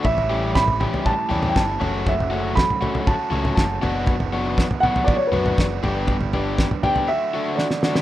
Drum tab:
SD |----o-------o---|----o-------o---|----o-------o---|----o-------oooo|
T2 |-----o----------|-----o----------|-----o----------|-----oo---------|
FT |oo---oooo-oo--o-|oo---oooo-oo--o-|oo---oooo-oo--o-|ooo--ooo--------|
BD |o---o---o---o---|o---o---o---o---|o---o---o---o---|o---o-----------|